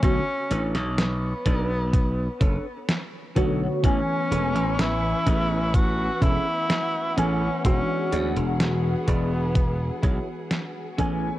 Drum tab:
HH |x-xxx-x-x-x-x-x-|x-xxx-x-x-x-x-x-|x-xxx-x-x-x-x-x-|
SD |---oo-------o---|----o-------o---|----o-------o---|
BD |o-----o-o-o---o-|o-----o-o-o-----|o-----o-o-o---o-|